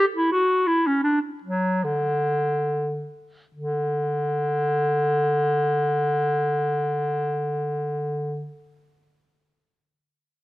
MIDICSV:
0, 0, Header, 1, 2, 480
1, 0, Start_track
1, 0, Key_signature, 2, "major"
1, 0, Tempo, 500000
1, 10020, End_track
2, 0, Start_track
2, 0, Title_t, "Clarinet"
2, 0, Program_c, 0, 71
2, 153, Note_on_c, 0, 64, 61
2, 300, Note_off_c, 0, 64, 0
2, 305, Note_on_c, 0, 66, 60
2, 640, Note_on_c, 0, 64, 58
2, 655, Note_off_c, 0, 66, 0
2, 833, Note_on_c, 0, 61, 54
2, 847, Note_off_c, 0, 64, 0
2, 987, Note_off_c, 0, 61, 0
2, 993, Note_on_c, 0, 62, 57
2, 1146, Note_off_c, 0, 62, 0
2, 1377, Note_on_c, 0, 54, 51
2, 1767, Note_on_c, 0, 50, 54
2, 1782, Note_off_c, 0, 54, 0
2, 2978, Note_off_c, 0, 50, 0
2, 3402, Note_on_c, 0, 50, 58
2, 8162, Note_off_c, 0, 50, 0
2, 10020, End_track
0, 0, End_of_file